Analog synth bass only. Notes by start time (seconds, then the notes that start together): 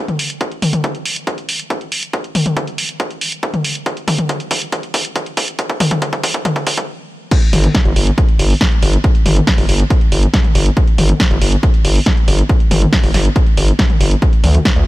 7.53 G1
7.85 G1
7.96 G1
8.39 G1
8.83 G1
9.26 G1
9.58 G1
9.69 G1
10.12 G1
10.55 G1
10.98 G1
11.31 G1
11.42 G1
11.85 G1
12.28 G1
12.71 G1
13.03 G1
13.14 G1
13.57 G1
14.01 G1
14.44 D2
14.76 D2